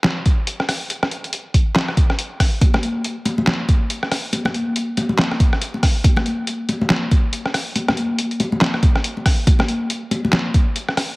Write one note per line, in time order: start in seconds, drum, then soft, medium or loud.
0.04 snare loud
0.04 clap medium
0.26 kick loud
0.26 closed hi-hat medium
0.47 closed hi-hat medium
0.60 cross-stick medium
0.69 cross-stick medium
0.69 open hi-hat loud
0.90 closed hi-hat medium
1.03 cross-stick medium
1.11 closed hi-hat medium
1.24 closed hi-hat soft
1.33 closed hi-hat medium
1.54 kick medium
1.54 closed hi-hat medium
1.76 snare loud
1.76 clap medium
1.88 cross-stick medium
1.97 kick loud
1.97 closed hi-hat medium
2.10 cross-stick medium
2.19 closed hi-hat medium
2.40 kick medium
2.40 cross-stick medium
2.40 open hi-hat loud
2.61 kick loud
2.61 closed hi-hat medium
2.61 muted conga soft
2.74 cross-stick medium
2.74 high conga medium
2.83 closed hi-hat medium
3.04 closed hi-hat medium
3.25 closed hi-hat medium
3.25 muted conga medium
3.38 high conga loud
3.47 snare loud
3.47 clap medium
3.69 kick loud
3.69 closed hi-hat medium
3.90 closed hi-hat medium
4.03 cross-stick medium
4.12 cross-stick medium
4.12 open hi-hat medium
4.33 closed hi-hat medium
4.33 muted conga medium
4.45 cross-stick medium
4.45 high conga loud
4.54 closed hi-hat medium
4.76 closed hi-hat medium
4.97 closed hi-hat medium
4.97 muted conga medium
5.09 high conga medium
5.19 snare loud
5.19 clap loud
5.31 cross-stick medium
5.40 kick loud
5.40 closed hi-hat medium
5.53 cross-stick medium
5.62 closed hi-hat medium
5.74 muted conga soft
5.83 kick medium
5.83 cross-stick medium
5.83 open hi-hat medium
6.04 kick loud
6.04 closed hi-hat medium
6.04 muted conga medium
6.17 cross-stick medium
6.17 high conga loud
6.26 closed hi-hat medium
6.47 closed hi-hat medium
6.69 closed hi-hat medium
6.69 muted conga medium
6.81 high conga loud
6.90 snare loud
6.90 clap medium
7.11 kick loud
7.11 closed hi-hat medium
7.33 closed hi-hat medium
7.46 cross-stick medium
7.54 cross-stick medium
7.54 open hi-hat medium
7.76 closed hi-hat medium
7.76 muted conga medium
7.88 cross-stick medium
7.88 high conga loud
7.97 closed hi-hat medium
8.19 closed hi-hat medium
8.31 closed hi-hat soft
8.40 closed hi-hat medium
8.40 muted conga medium
8.52 high conga medium
8.61 snare loud
8.61 clap medium
8.74 cross-stick medium
8.83 kick loud
8.83 closed hi-hat medium
8.96 cross-stick medium
9.04 closed hi-hat medium
9.17 muted conga soft
9.26 kick medium
9.26 cross-stick medium
9.26 open hi-hat medium
9.47 kick loud
9.47 closed hi-hat medium
9.47 muted conga medium
9.59 cross-stick medium
9.59 high conga loud
9.68 closed hi-hat medium
9.90 closed hi-hat medium
10.11 closed hi-hat medium
10.11 muted conga medium
10.25 high conga loud
10.33 snare loud
10.33 clap medium
10.54 kick loud
10.54 closed hi-hat medium
10.76 closed hi-hat medium
10.89 cross-stick medium
10.97 cross-stick medium
10.97 open hi-hat medium